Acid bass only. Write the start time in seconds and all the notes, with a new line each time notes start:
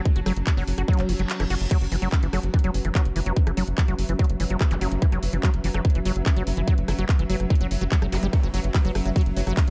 0.16 F#4
0.26 F#3
0.47 F#4
0.57 F#3
0.78 F#4
0.88 F#3
1.09 E3
1.19 F#3
1.40 E3
1.50 F#4
1.71 F#3
1.92 E3
2.02 F#3
2.23 E3
2.33 F#3
2.54 E3
2.64 F#3
2.85 E3
2.95 F#3
3.16 E3
3.26 F#3
3.47 E3
3.57 F#3
3.78 E3
3.88 F#3
4.09 E3
4.19 F#3
4.40 E3
4.50 F#3
4.71 E3
4.81 F#3
5.02 E3
5.12 F#3
5.33 E3
5.43 F#3
5.64 E3
5.74 F#3
5.95 E3
6.05 F#3
6.26 E3
6.37 F#3
6.57 E3
6.68 F#3
6.88 E3
6.99 F#3
7.19 E3
7.30 F#3
7.50 E3
7.61 F#3
7.81 F#3
7.92 F#3
8.02 F#3
8.12 F#4
8.23 G3
8.43 F#3
8.54 F#3
8.74 F#3
8.85 F#3
9.05 F#3
9.16 F#3
9.37 F#3
9.47 F#3